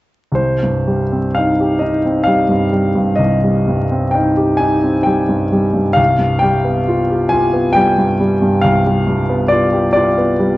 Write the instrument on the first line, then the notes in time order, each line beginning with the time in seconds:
grand piano
0.32 C2 C5
0.63 G2
0.87 G3
1.12 C4
1.35 D#4 F5
1.60 G4
1.79 D#4 D#5
2.05 C4
2.24 G3 F5
2.49 G2
2.72 G3
2.95 G2
3.15 C2 D#5
3.43 G3
3.67 G2
3.91 C4
4.11 D#4 G5
4.37 G4
4.57 D#4 G#5
4.83 C4
5.03 G3 G5
5.29 G2
5.52 G3
5.74 G2
5.93 C2 F5
6.19 G2
6.39 G3 G5
6.64 B3
6.88 F4
7.10 G4
7.29 F4 G#5
7.53 B3
7.73 G3 G5
7.98 G2
8.20 G3
8.42 G2
8.61 C2 F5
8.86 G3
9.07 G2
9.29 B3
9.48 F4 D5
9.73 G4
9.93 F4 D5
10.18 B3
10.39 G3